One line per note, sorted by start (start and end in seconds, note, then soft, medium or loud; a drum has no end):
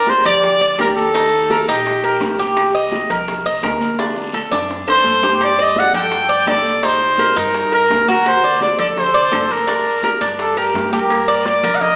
0.00 0.20 G1 medium
0.00 0.11 A#4 loud
0.00 0.24 D5 medium
0.07 0.25 C5 loud
0.07 high bongo medium
0.07 high conga medium
0.07 short guiro medium
0.07 maracas soft
0.25 0.75 D2 medium
0.25 0.60 G4 medium
0.25 0.75 D5 loud
0.25 high conga soft
0.25 low conga medium
0.25 short guiro medium
0.25 claves medium
0.25 maracas medium
0.43 high bongo medium
0.43 high conga soft
0.43 low conga medium
0.43 long guiro medium
0.43 maracas medium
0.61 0.78 D5 medium
0.61 high conga soft
0.61 maracas soft
0.79 1.62 D#2 medium
0.79 1.13 G4 medium
0.79 0.88 A#4 medium
0.79 high bongo medium
0.79 low bongo medium
0.79 high conga medium
0.79 short guiro medium
0.79 claves medium
0.79 maracas soft
0.96 1.64 A4 loud
0.96 high conga medium
0.96 short guiro medium
0.96 maracas medium
1.14 1.49 D#4 medium
1.14 high bongo medium
1.14 high conga soft
1.14 long guiro medium
1.14 maracas medium
1.33 high bongo soft
1.33 maracas soft
1.50 1.67 A#4 medium
1.50 high bongo medium
1.50 high conga loud
1.50 short guiro medium
1.50 claves medium
1.50 maracas soft
1.68 2.01 A#1 medium
1.68 2.03 D#4 medium
1.68 2.35 G4 medium
1.68 short guiro medium
1.68 maracas medium
1.85 high bongo medium
1.85 high conga soft
1.85 long guiro medium
1.85 maracas medium
2.03 2.20 A#1 medium
2.03 2.38 A#4 medium
2.03 high bongo soft
2.03 high conga soft
2.03 claves medium
2.03 maracas soft
2.20 3.04 C2 medium
2.20 high bongo medium
2.20 low bongo medium
2.20 high conga medium
2.20 short guiro medium
2.20 maracas soft
2.38 2.74 G4 medium
2.38 high bongo soft
2.38 high conga medium
2.38 short guiro medium
2.38 maracas medium
2.57 high bongo medium
2.57 high conga soft
2.57 long guiro medium
2.57 claves medium
2.57 maracas medium
2.74 3.09 D#5 medium
2.74 high conga soft
2.74 maracas soft
2.92 high bongo medium
2.92 high conga medium
2.92 short guiro medium
2.92 maracas soft
3.09 3.59 C2 loud
3.09 3.45 A#4 medium
3.09 high conga soft
3.09 low conga medium
3.09 short guiro medium
3.09 claves medium
3.09 maracas medium
3.28 high bongo medium
3.28 high conga soft
3.28 low conga medium
3.28 long guiro medium
3.28 maracas medium
3.46 3.63 D#5 medium
3.46 high conga soft
3.46 maracas soft
3.63 4.46 D2 medium
3.63 3.98 A#4 medium
3.63 high bongo medium
3.63 low bongo medium
3.63 high conga medium
3.63 short guiro medium
3.63 claves medium
3.63 maracas soft
3.80 high conga medium
3.80 short guiro medium
3.80 maracas medium
3.98 4.33 D4 medium
3.98 high bongo loud
3.98 high conga soft
3.98 long guiro medium
3.98 maracas medium
4.17 high bongo medium
4.17 maracas soft
4.33 4.51 A4 medium
4.33 high conga medium
4.33 short guiro medium
4.33 claves medium
4.33 maracas soft
4.51 4.85 F#2 loud
4.51 4.86 D4 medium
4.51 low bongo medium
4.51 short guiro medium
4.51 maracas medium
4.69 low bongo medium
4.69 high conga soft
4.69 long guiro medium
4.69 maracas medium
4.87 5.04 F#2 medium
4.87 5.22 A4 medium
4.87 5.45 C5 loud
4.87 low bongo medium
4.87 high conga soft
4.87 claves medium
4.87 maracas soft
5.04 5.89 G2 medium
5.04 high conga medium
5.04 short guiro medium
5.04 maracas soft
5.22 5.58 G4 medium
5.22 low bongo loud
5.22 high conga medium
5.22 short guiro medium
5.22 maracas medium
5.40 5.63 D5 loud
5.40 high bongo medium
5.40 high conga soft
5.40 long guiro medium
5.40 claves medium
5.40 maracas medium
5.58 5.93 D5 medium
5.58 5.80 D#5 medium
5.58 high conga soft
5.58 maracas soft
5.76 5.95 F#5 loud
5.76 high bongo medium
5.76 high conga medium
5.76 short guiro medium
5.76 maracas soft
5.93 6.44 G2 medium
5.93 6.29 A4 medium
5.93 6.45 G5 loud
5.93 high conga soft
5.93 low conga medium
5.93 short guiro medium
5.93 claves medium
5.93 maracas medium
6.12 high bongo medium
6.12 long guiro medium
6.12 maracas medium
6.29 6.47 D5 medium
6.29 high conga soft
6.29 maracas soft
6.47 7.31 C2 medium
6.47 6.82 A4 medium
6.47 6.86 D5 loud
6.47 high bongo medium
6.47 low bongo medium
6.47 high conga medium
6.47 short guiro medium
6.47 claves medium
6.47 maracas soft
6.64 high conga medium
6.64 short guiro medium
6.64 maracas medium
6.82 7.18 D#4 medium
6.82 7.39 C5 loud
6.82 high bongo medium
6.82 high conga soft
6.82 long guiro medium
6.82 maracas medium
7.00 high bongo soft
7.00 high conga soft
7.00 maracas soft
7.18 7.36 A#4 medium
7.18 high bongo medium
7.18 high conga medium
7.18 short guiro medium
7.18 claves medium
7.18 maracas soft
7.36 7.87 G2 loud
7.36 7.71 D#4 medium
7.36 7.73 A#4 loud
7.36 short guiro medium
7.36 maracas medium
7.54 high bongo medium
7.54 high conga soft
7.54 long guiro medium
7.54 maracas medium
7.72 8.07 A#4 medium
7.72 high bongo soft
7.72 high conga soft
7.72 claves medium
7.72 maracas soft
7.90 8.74 D2 medium
7.90 high bongo medium
7.90 low bongo medium
7.90 high conga medium
7.90 short guiro medium
7.90 maracas soft
8.08 8.43 F#4 medium
8.08 8.26 A#4 loud
8.08 high bongo soft
8.08 high conga medium
8.08 short guiro medium
8.08 maracas medium
8.26 8.60 C5 loud
8.26 high bongo medium
8.26 high conga soft
8.26 long guiro medium
8.26 claves medium
8.26 maracas medium
8.44 8.78 D5 medium
8.44 high conga soft
8.44 maracas soft
8.61 8.78 D5 medium
8.61 high bongo medium
8.61 high conga medium
8.61 short guiro medium
8.61 maracas soft
8.78 9.29 D2 loud
8.78 9.13 A4 medium
8.78 8.88 D5 loud
8.78 high conga soft
8.78 low conga medium
8.78 short guiro medium
8.78 claves medium
8.78 maracas medium
8.96 9.53 C5 loud
8.96 high bongo medium
8.96 high conga soft
8.96 low conga medium
8.96 long guiro medium
8.96 maracas medium
9.14 9.32 D5 medium
9.14 high conga soft
9.14 maracas soft
9.32 10.16 G1 medium
9.32 9.67 A4 medium
9.32 high bongo medium
9.32 low bongo medium
9.32 high conga medium
9.32 short guiro medium
9.32 claves medium
9.32 maracas soft
9.50 10.13 A#4 medium
9.50 high conga medium
9.50 short guiro medium
9.50 maracas medium
9.67 10.02 D4 medium
9.67 high bongo medium
9.67 high conga soft
9.67 long guiro medium
9.67 maracas medium
9.85 high bongo soft
9.85 high conga soft
9.85 maracas soft
10.03 10.21 A#4 medium
10.03 high bongo medium
10.03 high conga medium
10.03 short guiro medium
10.03 claves medium
10.03 maracas soft
10.21 10.71 G2 medium
10.21 10.56 D4 medium
10.21 short guiro medium
10.21 maracas medium
10.39 10.60 A4 medium
10.39 high bongo medium
10.39 high conga soft
10.39 long guiro medium
10.39 maracas medium
10.57 10.92 G4 medium
10.57 10.91 A#4 medium
10.57 high bongo soft
10.57 high conga soft
10.57 claves medium
10.57 maracas soft
10.74 11.57 G2 medium
10.74 high bongo medium
10.74 low bongo medium
10.74 high conga medium
10.74 short guiro medium
10.74 maracas soft
10.92 11.10 G4 medium
10.92 11.47 A#4 medium
10.92 high bongo soft
10.92 high conga medium
10.92 short guiro medium
10.92 maracas medium
11.10 cowbell loud
11.10 high conga soft
11.10 long guiro medium
11.10 claves medium
11.10 maracas loud
11.28 11.62 D5 medium
11.28 maracas soft
11.46 11.77 D5 loud
11.46 cowbell medium
11.46 high conga medium
11.46 short guiro medium
11.46 maracas soft
11.63 11.96 C2 medium
11.63 11.96 A#4 medium
11.63 high conga soft
11.63 low conga medium
11.63 short guiro medium
11.63 claves medium
11.63 maracas medium
11.75 11.82 F#5 medium
11.81 11.96 D#5 loud
11.81 cowbell loud
11.81 high conga soft
11.81 low conga medium
11.81 long guiro medium
11.81 maracas medium